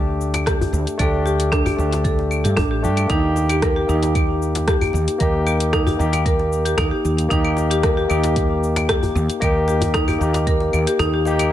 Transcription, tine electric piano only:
0.00 0.97 A3 medium
0.00 0.99 D4 medium
0.00 1.01 G4 loud
0.97 1.74 A3 medium
0.97 1.75 D4 medium
0.97 1.76 G4 medium
1.77 2.80 A3 medium
1.77 2.81 D4 medium
1.77 2.82 G4 medium
2.82 3.06 A3 medium
2.82 3.07 D4 medium
2.82 3.07 G4 medium
3.07 3.85 A#3 medium
3.07 3.86 D#4 medium
3.12 3.87 G4 medium
3.87 5.16 A#3 medium
3.87 5.17 D#4 medium
3.87 5.18 G4 medium
5.18 5.95 A#3 medium
5.18 5.96 D#4 medium
5.18 5.97 G4 medium
5.97 7.27 A#3 medium
5.97 7.28 D#4 medium
5.97 7.29 G4 medium
7.28 8.06 A#3 medium
7.28 8.07 D#4 medium
7.33 8.08 G4 loud
8.08 9.38 A#3 medium
8.08 9.39 D#4 medium
8.08 9.40 G4 medium
9.40 10.17 A#3 medium
9.40 10.18 D#4 medium
9.44 10.19 G4 loud
10.19 11.22 A#3 medium
10.19 11.24 D#4 medium
10.23 11.25 G4 medium
11.25 11.49 A#3 medium
11.25 11.49 D#4 medium
11.25 11.50 G4 loud

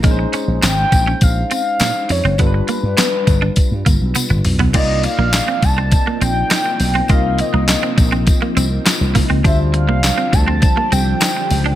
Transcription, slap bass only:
0.04 0.25 A#1 loud
0.48 0.58 A#1 medium
0.63 0.84 G#1 loud
0.92 1.13 A#1 medium
1.22 1.43 A#1 medium
1.81 1.91 A#2 medium
2.10 2.20 F2 medium
2.25 2.35 F#1 medium
2.39 2.60 G1 medium
2.83 2.94 G2 medium
3.27 3.48 G1 medium
3.71 3.82 G2 medium
3.86 3.97 G1 medium
4.01 4.11 B1 medium
4.30 4.41 G1 medium
4.45 4.55 B1 medium
4.59 4.70 B1 medium
4.74 5.06 C2 loud
5.18 5.39 A#1 medium
5.63 5.94 C2 medium
6.21 6.42 A#1 medium
6.80 7.01 B1 loud
7.10 7.41 C2 loud
7.54 7.75 C2 medium
7.98 8.29 A#1 loud
8.57 8.78 C2 medium
9.01 9.11 C2 medium
9.16 9.26 C2 loud
9.30 9.41 C#2 medium
9.45 9.89 D2 loud
9.89 10.10 C2 loud
10.33 10.64 D2 loud
10.92 11.13 C2 medium
11.51 11.72 C#2 medium

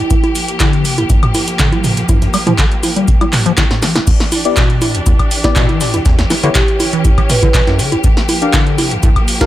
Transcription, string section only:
0.00 4.03 G4 medium
0.11 4.03 F3 medium
0.11 4.03 A#3 medium
4.07 8.00 E3 medium
4.07 6.04 D4 medium
4.07 9.46 G4 medium
6.06 8.02 C#4 medium
8.04 9.46 F3 medium
8.04 9.46 A#3 medium

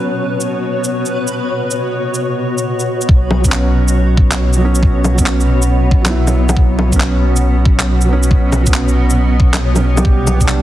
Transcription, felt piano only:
0.00 3.05 F#3 medium
0.00 3.07 B3 medium
0.00 3.09 C#4 medium
3.40 4.55 F#3 medium
3.44 4.59 B3 medium
3.44 4.61 C#4 medium
4.57 5.12 F#3 medium
4.61 5.15 B3 medium
4.65 5.17 C#4 loud
5.14 6.00 F#3 medium
5.14 6.03 B3 medium
5.22 6.04 C#4 medium
6.01 6.87 F#3 medium
6.01 6.89 B3 medium
6.09 6.91 E4 loud
6.88 8.03 F#3 medium
6.88 8.07 B3 medium
6.96 8.09 C#4 loud
8.05 8.60 F#3 medium
8.05 8.63 B3 medium
8.13 8.65 C#4 loud
8.62 9.48 F#3 medium
8.66 9.51 B3 medium
8.70 9.53 C#4 medium
9.73 9.84 F#3 medium
9.73 9.85 B3 medium
9.77 9.86 C#4 medium
9.95 10.35 G3 medium
9.95 10.37 B3 medium
9.99 10.38 G4 medium
10.36 10.62 G3 medium
10.40 10.62 B3 medium
10.40 10.62 D4 loud

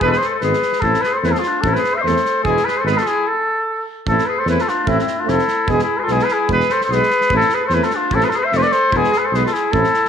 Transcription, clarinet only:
0.02 0.10 G#4 medium
0.08 0.16 F4 medium
0.15 0.27 G#4 medium
0.26 0.34 A4 medium
0.35 0.43 A4 medium
0.43 0.85 G#4 medium
0.84 1.07 E4 medium
1.06 1.19 G#4 medium
1.18 1.29 A4 medium
1.27 1.31 E4 medium
1.27 1.34 A4 medium
1.33 1.41 G#4 medium
1.40 1.49 F4 medium
1.48 1.70 D4 medium
1.68 1.79 E4 medium
1.78 2.00 G#4 medium
1.98 2.09 C5 medium
2.07 2.46 A4 medium
2.48 2.71 E4 medium
2.69 2.82 G#4 medium
2.81 2.88 A4 medium
2.91 3.04 G#4 medium
3.02 3.11 F4 medium
3.10 3.28 E4 medium
4.09 4.30 E4 medium
4.29 4.42 G#4 medium
4.40 4.48 A4 medium
4.49 4.62 E4 medium
4.60 4.70 F4 medium
4.69 4.89 D4 medium
4.88 4.98 C4 medium
4.99 5.19 C4 medium
5.17 5.31 D4 medium
5.29 5.72 E4 medium
5.72 5.82 E4 medium
5.83 6.01 E4 medium
6.00 6.14 F4 medium
6.00 6.04 G#4 soft
6.13 6.26 E4 medium
6.24 6.32 G#4 medium
6.30 6.50 E4 medium
6.52 6.72 G#4 medium
6.70 6.81 A4 medium
6.83 6.93 A4 medium
6.91 7.31 G#4 medium
7.34 7.56 E4 medium
7.54 7.63 G#4 medium
7.64 7.75 A4 medium
7.73 7.86 E4 medium
7.84 7.95 F4 medium
7.94 8.15 D4 medium
8.13 8.24 E4 medium
8.23 8.36 F4 medium
8.23 8.26 G#4 medium
8.34 8.45 G#4 medium
8.44 8.55 C5 medium
8.53 8.61 A4 medium
8.59 8.68 B4 medium
8.67 8.93 A4 medium
8.92 9.14 E4 medium
9.12 9.26 G#4 medium
9.25 9.35 A4 medium
9.33 9.44 G#4 medium
9.45 9.55 F4 medium
9.53 9.74 E4 medium
9.74 10.09 E4 medium

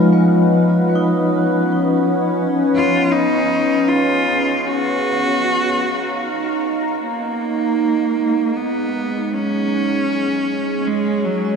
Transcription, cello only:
2.75 3.13 F4 medium
3.11 3.90 D#4 medium
3.88 4.68 F4 medium
4.67 6.60 F#4 medium
7.01 8.57 A#3 medium
8.56 9.34 B3 medium
9.33 10.88 C#4 medium
10.87 11.26 G#3 medium
11.25 11.56 F#3 medium

